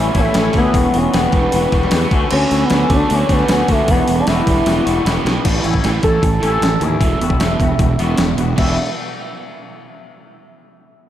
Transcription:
Already playing: A2 E3 G3 C#4 E4
0.00 E6
0.14 A1 G3 C#4 E4 A5, kick, open hi-hat
0.18 A3
0.25 snare
0.33 A1 G3 C#4 E4, snare, open hi-hat
0.53 D2 E3 E4, kick, open hi-hat
0.57 B3 C#4 B5
0.72 E1 E2 G3 B3, kick, open hi-hat
0.76 F#4
0.93 E1 B3 C#4 F#4 C#6, open hi-hat
1.11 E1 E3 G3 B3 F#4 B5, snare, open hi-hat
1.32 E1 G3 F#4, kick, open hi-hat
1.37 B3
1.51 E1 E3 G3 B3 F#4, open hi-hat
1.72 E1 G3 B3 F#4, kick, open hi-hat
1.83 snare
1.91 E2 G3 B3, snare, open hi-hat
1.95 F#4
2.10 D2 D3 A3 C#4 F#4, kick, open hi-hat
2.28 A3 C#4 F#4 C#6, crash
2.32 D2 D3 C#4
2.48 D2 C#4 F#4, open hi-hat
2.59 B5
2.64 B3
2.70 D2 D3 A3 C#4 F#4, snare, open hi-hat
2.90 D2 A3 C#4 F#4 D6, kick, open hi-hat
2.94 D4
3.08 D2 D3 A3 C#4 F#4 C#6, open hi-hat
3.14 C#4
3.29 D2 A3 B3 C#4 F#4 B5, kick, open hi-hat
3.39 snare
3.47 D2 A3 C#4 B5, snare, open hi-hat
3.51 B3 F#4
3.68 D2 D3 A3 C#4 F#4 A5, kick, open hi-hat
3.88 E1 E2 G3 B3 B5, kick, open hi-hat
3.92 F#4
4.08 E1 B3 F#4, open hi-hat
4.19 D4 D6
4.27 E1 E3 G3 B3 E4 F#4 E6, snare, open hi-hat
4.47 E1 G3 B3 F#4, kick, open hi-hat
4.66 E1 E3 G3 B3 F#4, snare, open hi-hat
4.85 E1 G3 B3 F#4, open hi-hat
5.05 E1 G3 B3 F#4, snare, open hi-hat
5.25 B1 E3 B3 F#4, snare, open hi-hat
5.44 A1 A2 E3 G3, kick, open hi-hat, crash
5.62 A1 A2 E3 G3 C#4 E4, open hi-hat
5.74 kick
5.83 A1 A2 E3 G3, snare, open hi-hat
6.02 A1 A2 E3 G3 C#4 E4 A4, kick, open hi-hat
6.22 A1 A2 E3, kick, open hi-hat
6.40 A1 A2 E3 G3 C#4 E4 A4, open hi-hat
6.59 A1 A2 E3, snare, open hi-hat
6.80 D#2 A2 E3 G3 C#4 E4 E5, open hi-hat
7.00 E1 E2 B2 E3, kick, open hi-hat
7.19 E1 E2 B2 G3 B3 F#4, open hi-hat
7.30 kick
7.40 E1 E2 B2 E3, snare, open hi-hat
7.60 E1 E2 B2 G3 B3 F#4, kick, open hi-hat
7.79 E1 E2 B2, kick, open hi-hat
7.99 E1 E2 B2 E3 G3 B3 F#4, open hi-hat
8.18 E1 E2 B2, snare, open hi-hat
8.37 E1 E2 B2 G3 B3 F#4, open hi-hat
8.56 E1 E2 B2 E3 G3 B3 E4 E5, kick, crash
8.60 F#4

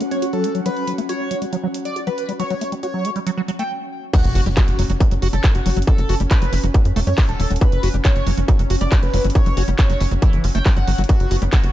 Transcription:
Already playing: F#3 C#4 F#4 F#5
0.00 A3, closed hi-hat
0.11 C#4 C#5, closed hi-hat
0.22 F#4, closed hi-hat
0.33 F#3 A4, closed hi-hat
0.44 A3, closed hi-hat
0.55 F#3, closed hi-hat
0.66 F#3 B4, closed hi-hat
0.77 closed hi-hat
0.87 F#3, closed hi-hat
0.98 A3, closed hi-hat
1.09 F#4 C#5, closed hi-hat
1.31 F#3, closed hi-hat
1.42 G3, closed hi-hat
1.53 F#3, closed hi-hat
1.64 F#3
1.74 closed hi-hat
1.85 D5, closed hi-hat
1.96 F#4, closed hi-hat
2.07 F#3 B4, closed hi-hat
2.18 closed hi-hat
2.29 G3, closed hi-hat
2.40 F#3 C#5, closed hi-hat
2.50 F#3, closed hi-hat
2.61 A3, closed hi-hat
2.72 G3, closed hi-hat
2.83 F#4 C#5, closed hi-hat
2.94 F#3
3.05 A3, closed hi-hat
3.16 G3, closed hi-hat
3.27 F#3, closed hi-hat
3.37 F#3
3.48 F#3, closed hi-hat
3.59 A3 G5, closed hi-hat
4.14 F#3 C#4 F#4, kick, closed hi-hat, crash, impact
4.24 F#1, closed hi-hat
4.35 F#1 F#4, open hi-hat
4.46 F#1 G3, closed hi-hat
4.57 F#3 F#4, kick, clap, closed hi-hat
4.68 F#1, closed hi-hat
4.79 F#1 F#3, open hi-hat
4.90 F#1 F#3, closed hi-hat
5.00 F#3, kick, closed hi-hat
5.11 F#1 F#3, closed hi-hat
5.22 F#1 F#4, open hi-hat
5.33 F#1 G3 A4, closed hi-hat
5.44 F#3, kick, clap, closed hi-hat
5.55 F#1 F#4, closed hi-hat
5.66 F#1 F#3, open hi-hat
5.77 G1 F#3, closed hi-hat
5.82 closed hi-hat
5.87 E3 A4, kick, closed hi-hat
5.98 F#1 F#3, closed hi-hat
6.09 F#1 F#4, open hi-hat
6.20 F#1 G3, closed hi-hat
6.31 F#3 B4, kick, clap, closed hi-hat
6.42 F#1 F#3, closed hi-hat
6.53 F#1 E3, open hi-hat
6.64 F#1 F#3, closed hi-hat
6.74 E3, kick, closed hi-hat
6.85 F#2, closed hi-hat
6.96 E1 A3, open hi-hat
7.07 F#2 G3 C#5, closed hi-hat
7.18 F#3, kick, clap, open hi-hat
7.29 E1 A4, closed hi-hat
7.40 E1 E3, open hi-hat
7.50 E1 F#3, closed hi-hat
7.56 closed hi-hat
7.61 F#3 B4, kick, closed hi-hat
7.72 F#1, closed hi-hat
7.83 F#1 F#4, open hi-hat
7.94 F#1 G3, closed hi-hat
8.05 F#3 C#5, kick, clap, closed hi-hat
8.16 F#1, closed hi-hat
8.27 F#1 F#3, open hi-hat
8.37 F#1 F#3, closed hi-hat
8.48 F#3, kick, closed hi-hat
8.59 F#1 F#3, closed hi-hat
8.70 F#1 F#4, open hi-hat
8.81 F#1 G3 D5, closed hi-hat
8.92 F#3, kick, clap, closed hi-hat
9.03 F#1 B4, closed hi-hat
9.14 F#1 F#3, open hi-hat
9.24 G1 F#3, closed hi-hat
9.30 closed hi-hat
9.35 E3 C#5, kick, closed hi-hat
9.46 F#1 F#3, closed hi-hat
9.57 F#1 F#4, open hi-hat
9.68 F#1 G3, closed hi-hat
9.79 F#3 C#5, kick, clap, closed hi-hat
9.90 F#1 F#3, closed hi-hat
10.00 F#1 E3, open hi-hat
10.11 F#1 F#3, closed hi-hat
10.22 E3, kick, closed hi-hat
10.33 F#1, closed hi-hat
10.44 F#1 F#3, open hi-hat
10.55 F#1 A3 G5, closed hi-hat
10.66 F#3, kick, clap, open hi-hat
10.77 G1 F#3 F#5, closed hi-hat
10.87 G1 F#3, open hi-hat
10.98 G1 F#3, closed hi-hat
11.04 closed hi-hat
11.09 F#3 B3 F#4, kick, closed hi-hat
11.20 F#1, closed hi-hat
11.31 F#1 F#4, open hi-hat
11.42 F#1 G3, closed hi-hat
11.53 F#3 F#4, kick, clap, closed hi-hat
11.64 F#1, closed hi-hat

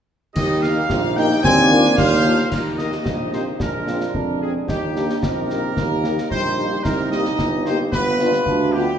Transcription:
0.35 D#2 G3 D#4 G4 D#5, concert bass drum, crash
0.62 A#3 D#4 G4 F5, snare
0.90 A#1 F4, concert bass drum, snare
1.16 A#3 D#4 G4 G5, snare
1.31 snare
1.44 D#2 A#3 C4 D4 G#5, concert bass drum, snare
1.70 A#3 D4 F4
1.85 snare
1.97 D#2 A#3 C5 F5, concert bass drum, snare
2.24 A#3 D4 F4
2.39 snare
2.51 D#2 G3 D#4 A#4, concert bass drum, snare, crash
2.78 A#3 D#4 G4 D#5, snare
2.92 snare
3.06 A#1 A#3, concert bass drum, snare
3.32 A#3 C4 D#4 G4 C5, snare
3.60 A#1 G#3 D4 A#4, concert bass drum, snare
3.87 C4 D4 F4 G#4, snare
4.00 snare
4.14 F2 D4, concert bass drum
4.41 C4 D4 G#4
4.68 D#2 G3 D#4 G4, concert bass drum, snare
4.95 A#3 D4 D#4 G4, snare
5.10 snare
5.23 A#1 C4 A#4, concert bass drum, snare
5.49 A#3 D#4 G4, snare
5.77 D#2 A#3, concert bass drum, snare
6.04 A#3 D#4 G4, snare
6.18 snare
6.30 A#1 G3 C5, concert bass drum
6.58 A#3 D#4 G4
6.84 C2 G3 D#4 A#4, concert bass drum, snare, crash
7.11 A#3 D#4 G4 D#5, snare
7.25 snare
7.39 G1, concert bass drum, snare
7.66 A#3 D#4 G4 C5, snare
7.92 G1 B3 F4 B4, concert bass drum, snare
8.19 G3 D4 F4, snare
8.33 snare
8.46 D2 D4, concert bass drum
8.73 G3 B3 D4 F4 G4

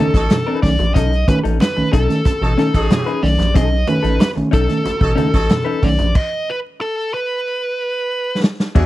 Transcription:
Already playing: C#4 A4
0.00 D#4 A4
0.14 A1 F#3 D#4 A4, muted hollow-body jazz guitar stroke, kick, snare, closed hi-hat
0.30 B2, muted hollow-body jazz guitar stroke, snare, closed hi-hat, high conga
0.47 C#4 D#4 B4
0.62 B1 D#3 A3 C#4 D5, kick, snare, open hi-hat
0.79 A#1 A3, muted hollow-body jazz guitar stroke, closed hi-hat, high conga
0.94 B1 B2 C#4 D#4 A4 D#5, kick, closed hi-hat, muted conga
1.12 muted hollow-body jazz guitar stroke, closed hi-hat
1.28 D#3 A3 C#4 B4, muted hollow-body jazz guitar stroke, kick, closed hi-hat, muted conga
1.43 A1 A3 C#4 D#4 A4, closed hi-hat
1.60 B4, snare, closed hi-hat, high conga
1.77 B1 D#3 A3 C#4, muted hollow-body jazz guitar stroke
1.93 B1 B2 C#4 D#4 A4, kick, closed hi-hat
2.09 D#3 A3 C#4, muted hollow-body jazz guitar stroke, snare, closed hi-hat
2.25 A1, muted hollow-body jazz guitar stroke, kick, closed hi-hat, muted conga
2.42 A1 B2 F#3 D#4 A4, muted hollow-body jazz guitar stroke
2.58 D#3 A3 C#4 D#4 A4, snare, closed hi-hat
2.74 A1 F#3 D#4 A4, muted hollow-body jazz guitar stroke, kick, closed hi-hat
2.81 G#4
2.90 B2, muted hollow-body jazz guitar stroke, snare, closed hi-hat, high conga
3.06 C#4 D#4 B4, closed hi-hat
3.22 B1 D#3 A3 C#4 D5, muted hollow-body jazz guitar stroke, snare, open hi-hat
3.39 A#1 A3 C#4, muted hollow-body jazz guitar stroke, snare, closed hi-hat, high conga
3.54 B1 B2 C#4 D#4 A4 D#5, kick, closed hi-hat, muted conga
3.71 muted hollow-body jazz guitar stroke
3.87 D#3 A3 C#4 B4, muted hollow-body jazz guitar stroke, closed hi-hat, muted conga
4.03 A1 C#4 D#4 A4, closed hi-hat
4.20 B4, snare, closed hi-hat, high conga
4.36 B1 D#3 A3 C#4, muted hollow-body jazz guitar stroke, closed hi-hat
4.51 B1 B2 C#4 D#4 A4, kick, closed hi-hat
4.68 D#3 A3 C#4, muted hollow-body jazz guitar stroke, snare, closed hi-hat
4.84 A1 C#4, muted hollow-body jazz guitar stroke, closed hi-hat, muted conga
5.00 A1 B2 F#3 D#4 A4, muted hollow-body jazz guitar stroke, kick
5.16 D#3 A3 C#4 D#4 A4, closed hi-hat, muted conga, low conga
5.32 A1 F#3 D#4 A4, muted hollow-body jazz guitar stroke, kick, snare, closed hi-hat
5.49 B2, muted hollow-body jazz guitar stroke, snare, closed hi-hat, high conga
5.65 C#4 D#4 B4
5.81 B1 D#3 A3 C#4 D5, muted hollow-body jazz guitar stroke, kick, open hi-hat
5.98 A#1 A3 C#4, muted hollow-body jazz guitar stroke, closed hi-hat, high conga
6.15 D#5, kick, crash
6.50 B4
6.81 A4
7.14 B4
8.44 snare
8.60 snare
8.75 E2 E3 D4 F#4 G#4 D5 E5 G#5, kick, crash, muted conga

